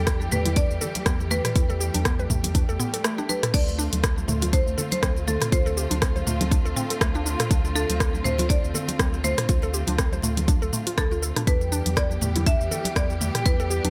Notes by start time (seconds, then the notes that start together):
Already playing: E2 E3 G3 A3 G4 A4
0.07 kick, cross-stick, closed hi-hat, shaker
0.21 high conga, shaker
0.31 E2 A3 B4, mid tom, muted conga, low conga, shaker
0.46 E4, closed hi-hat, high conga, low conga, shaker
0.56 D4 D5, kick, closed hi-hat, shaker
0.70 E2, shaker
0.81 A4, low conga, shaker
0.95 closed hi-hat, muted conga, high conga, shaker
1.06 E2 B3, kick, cross-stick, closed hi-hat, high conga, shaker
1.20 muted conga, shaker
1.31 A3 B4, low conga, shaker
1.45 cross-stick, closed hi-hat, mid tom, muted conga, shaker
1.55 E2 E4, kick, closed hi-hat, shaker
1.70 A4, muted conga, shaker
1.80 G4, shaker
1.94 E2 D4, closed hi-hat, high conga, shaker
2.05 B3, kick, cross-stick, closed hi-hat, shaker
2.19 B4, high conga, shaker
2.30 E2 A3, kick, mid tom, muted conga, low conga, shaker
2.44 closed hi-hat, high conga, low conga, shaker
2.54 D4, kick, closed hi-hat, muted conga, high conga, shaker
2.69 E2 A4, shaker
2.80 B3, mid tom, shaker
2.94 A4, closed hi-hat, muted conga, shaker
3.04 A3, cross-stick, closed hi-hat, shaker
3.18 D4, muted conga, shaker
3.29 D4 B4, high conga, shaker
3.43 A4, cross-stick, closed hi-hat, mid tom, muted conga, shaker
3.54 D2 D3 C4 D4 F4 D5, kick, closed hi-hat, crash, shaker
3.68 muted conga, shaker
3.79 D4, shaker
3.93 D2, closed hi-hat, high conga, shaker
4.03 kick, cross-stick, closed hi-hat, muted conga, shaker
4.18 high conga, shaker
4.28 D2 A3, mid tom, muted conga, low conga, shaker
4.42 F4, closed hi-hat, high conga, low conga, shaker
4.53 D4 C5, kick, closed hi-hat, shaker
4.67 D2, shaker
4.78 A4, low conga, shaker
4.92 C5, closed hi-hat, muted conga, high conga, shaker
5.03 D2 C4, kick, cross-stick, closed hi-hat, high conga, shaker
5.17 muted conga, shaker
5.27 A3 A4, low conga, shaker
5.41 cross-stick, closed hi-hat, mid tom, muted conga, shaker
5.52 D2 F4 C5, kick, closed hi-hat, shaker
5.66 A4, muted conga, shaker
5.77 G4, shaker
5.91 D2 D4, closed hi-hat, high conga, shaker
6.02 C4, kick, cross-stick, closed hi-hat, muted conga, shaker
6.16 C5, high conga, shaker
6.27 D2 A3, mid tom, muted conga, shaker
6.41 closed hi-hat, high conga, low conga, shaker
6.51 D4, kick, closed hi-hat, muted conga, high conga, shaker
6.65 D2 A4, shaker
6.76 C4, mid tom, shaker
6.90 A4, closed hi-hat, muted conga, shaker
7.01 D2 A3, kick, cross-stick, closed hi-hat, shaker
7.15 D4, muted conga, shaker
7.26 D4, shaker
7.39 A4, cross-stick, closed hi-hat, mid tom, muted conga, shaker
7.51 D2 D4, kick, closed hi-hat, shaker
7.65 muted conga, shaker
7.75 D4 A4, shaker
7.89 D2, closed hi-hat, high conga, shaker
8.00 kick, cross-stick, closed hi-hat, shaker
8.15 high conga, shaker
8.24 D2 A3 C5, mid tom, muted conga, low conga, shaker
8.38 F4, closed hi-hat, high conga, low conga, shaker
8.49 D4 D5, kick, closed hi-hat, muted conga, shaker
8.64 D2, shaker
8.74 A4, low conga, shaker
8.88 closed hi-hat, muted conga, high conga, shaker
8.99 D2 C4, kick, cross-stick, closed hi-hat, high conga, shaker
9.14 muted conga, shaker
9.24 A3 C5, low conga, shaker
9.38 cross-stick, closed hi-hat, mid tom, muted conga, shaker
9.49 D2 F4, kick, closed hi-hat, shaker
9.62 A4, muted conga, shaker
9.74 G4, shaker
9.87 D2 D4, closed hi-hat, high conga, shaker
9.98 C4, kick, cross-stick, closed hi-hat, shaker
10.13 C5, high conga, shaker
10.22 D2 A3, mid tom, muted conga, shaker
10.37 closed hi-hat, high conga, low conga, shaker
10.47 D4, kick, closed hi-hat, muted conga, high conga, shaker
10.62 D2 A4, shaker
10.73 A3, mid tom, shaker
10.87 F4, closed hi-hat, muted conga, shaker
10.98 D2 D4 A4, kick, cross-stick, closed hi-hat, shaker
11.11 F4, muted conga, shaker
11.22 A4, shaker
11.36 D4, cross-stick, closed hi-hat, mid tom, muted conga, shaker
11.47 E2 E3 G3 B3 D4 G4 B4, kick, closed hi-hat, shaker
11.61 muted conga, shaker
11.72 D4, shaker
11.86 E2, closed hi-hat, high conga, shaker
11.96 D5, kick, cross-stick, closed hi-hat, muted conga, shaker
12.11 high conga, shaker
12.21 E2 A3, mid tom, muted conga, low conga, shaker
12.36 E4, closed hi-hat, high conga, low conga, shaker
12.46 D4 E5, kick, closed hi-hat, shaker
12.60 E2, shaker
12.71 A4, low conga, shaker
12.85 closed hi-hat, muted conga, high conga, shaker
12.96 E2 B3 D5, kick, cross-stick, closed hi-hat, high conga, shaker
13.10 muted conga, shaker
13.21 A3, low conga, shaker
13.35 cross-stick, closed hi-hat, mid tom, muted conga, shaker
13.46 E2 E4 B4, kick, closed hi-hat, shaker
13.60 A4, muted conga, shaker
13.70 G4, shaker
13.84 E2 D4, closed hi-hat, high conga, shaker